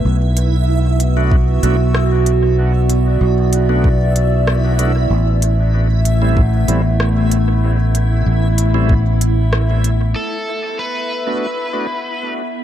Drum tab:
HH |-x-x-x-x|-x-x-x-x|-x-x-x-x|-x-x-x-x|
SD |------r-|------r-|------r-|------r-|
BD |----o---|----o---|----o---|----o---|

HH |--------|
SD |--------|
BD |--------|